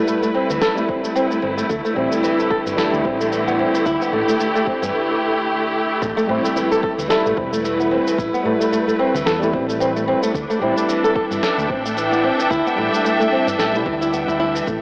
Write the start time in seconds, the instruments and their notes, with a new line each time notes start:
Already playing: tine electric piano G3 E4, string section A3 E4 B4
0.07 nylon-string guitar A3, cabasa
0.22 nylon-string guitar A3, cabasa
0.34 nylon-string guitar C4
0.50 fretless electric bass D2, nylon-string guitar E3, cabasa
0.61 nylon-string guitar A4, snare, cabasa
0.75 tine electric piano G3 C4 E4, nylon-string guitar A3, cabasa
0.88 nylon-string guitar C4, kick
1.04 nylon-string guitar A3, cabasa
1.15 nylon-string guitar C4, cabasa
1.30 nylon-string guitar A3, cabasa
1.42 fretless electric bass G1, nylon-string guitar C4
1.57 nylon-string guitar A3, cabasa
1.69 fretless electric bass D2, string section D3, nylon-string guitar A3, kick, cabasa
1.85 nylon-string guitar A3, cabasa
1.95 fretless electric bass A1, tine electric piano G3 C4, nylon-string guitar C4
1.99 tine electric piano E4
2.12 nylon-string guitar A3, cabasa
2.16 string section G4
2.23 nylon-string guitar E3, cabasa
2.38 nylon-string guitar A4, cabasa
2.51 nylon-string guitar A4, kick
2.66 fretless electric bass G2, nylon-string guitar E3, cabasa
2.76 tine electric piano G3, nylon-string guitar A4, snare, cabasa
2.80 tine electric piano E4
2.93 fretless electric bass D2, nylon-string guitar A3, cabasa
3.05 fretless electric bass A1, nylon-string guitar C4, kick
3.20 nylon-string guitar A3, cabasa
3.32 nylon-string guitar E3, cabasa
3.47 nylon-string guitar B3, cabasa
3.59 nylon-string guitar C4
3.74 nylon-string guitar E3, cabasa
3.86 fretless electric bass D2, nylon-string guitar E4, kick, cabasa
4.01 nylon-string guitar B3, cabasa
4.13 fretless electric bass A1, nylon-string guitar A3
4.29 nylon-string guitar A3, cabasa
4.40 nylon-string guitar A3, cabasa
4.55 nylon-string guitar A3, cabasa
4.67 nylon-string guitar C4, kick
4.82 fretless electric bass G2, nylon-string guitar E3, cabasa
6.02 fretless electric bass A1, nylon-string guitar A3, kick, impact, cabasa
6.17 nylon-string guitar A3, cabasa
6.27 fretless electric bass A2, tine electric piano G3 C4, nylon-string guitar C4
6.31 tine electric piano E4
6.45 nylon-string guitar A3, cabasa
6.56 nylon-string guitar E3, cabasa
6.71 nylon-string guitar A4, cabasa
6.83 nylon-string guitar A4, kick
6.98 fretless electric bass D2, nylon-string guitar E3, cabasa
7.05 tine electric piano G3, string section B4
7.10 tine electric piano E4, nylon-string guitar A4, snare, cabasa
7.26 fretless electric bass A1, nylon-string guitar A3, cabasa
7.37 fretless electric bass E1, nylon-string guitar C4, kick
7.53 nylon-string guitar A3, cabasa
7.64 nylon-string guitar E3, cabasa
7.79 nylon-string guitar B3, cabasa
7.91 nylon-string guitar C4
8.07 nylon-string guitar E3, cabasa
8.18 fretless electric bass A1, nylon-string guitar E4, kick, cabasa
8.34 nylon-string guitar B3, cabasa
8.43 fretless electric bass A2, tine electric piano G3 E4, nylon-string guitar A3
8.61 nylon-string guitar A3, cabasa
8.72 nylon-string guitar A3, cabasa
8.88 nylon-string guitar A3, cabasa
8.99 nylon-string guitar C4
9.15 fretless electric bass D2, nylon-string guitar E3, cabasa
9.26 fretless electric bass E2, nylon-string guitar A4, snare, cabasa
9.40 tine electric piano G3 C4, nylon-string guitar A3, cabasa
9.44 tine electric piano E4
9.53 fretless electric bass A1, nylon-string guitar C4, kick
9.69 nylon-string guitar A3, cabasa
9.80 nylon-string guitar C4, cabasa
9.96 nylon-string guitar A3, cabasa
10.08 nylon-string guitar C4
10.23 nylon-string guitar A3, cabasa
10.34 fretless electric bass D2, nylon-string guitar A3, string section D4, kick, cabasa
10.50 nylon-string guitar A3, cabasa
10.58 fretless electric bass A1, tine electric piano G3 C4, nylon-string guitar C4, string section A4
10.63 tine electric piano E4
10.77 nylon-string guitar A3, cabasa
10.88 nylon-string guitar E3, cabasa
11.04 nylon-string guitar A4, string section E5, cabasa
11.15 nylon-string guitar A4, string section G5, kick
11.31 fretless electric bass G2, nylon-string guitar E3, cabasa
11.43 nylon-string guitar A4, snare, cabasa
11.58 fretless electric bass D2, nylon-string guitar A3, cabasa
11.70 fretless electric bass A1, nylon-string guitar C4, kick
11.86 nylon-string guitar A3, cabasa
11.97 nylon-string guitar E3, cabasa
12.12 nylon-string guitar B3, cabasa
12.24 nylon-string guitar C4
12.39 nylon-string guitar E3, cabasa
12.51 fretless electric bass D2, nylon-string guitar E4, kick, cabasa
12.66 nylon-string guitar B3, cabasa
12.76 fretless electric bass A1, tine electric piano G3, nylon-string guitar A3
12.80 tine electric piano E4
12.93 nylon-string guitar A3, cabasa
13.05 nylon-string guitar A3, cabasa
13.20 nylon-string guitar A3, cabasa
13.32 nylon-string guitar C4
13.47 fretless electric bass G2, nylon-string guitar E3, cabasa
13.59 fretless electric bass A1, nylon-string guitar A4, snare, cabasa
13.73 tine electric piano G3 E4, nylon-string guitar A3, cabasa
13.86 fretless electric bass D2, nylon-string guitar E3, kick
14.01 nylon-string guitar E4, cabasa
14.13 nylon-string guitar B3, cabasa
14.28 fretless electric bass D2, nylon-string guitar E4, cabasa
14.40 nylon-string guitar E4
14.55 nylon-string guitar E3, cabasa
14.67 fretless electric bass A1, nylon-string guitar A3, string section A3, kick, cabasa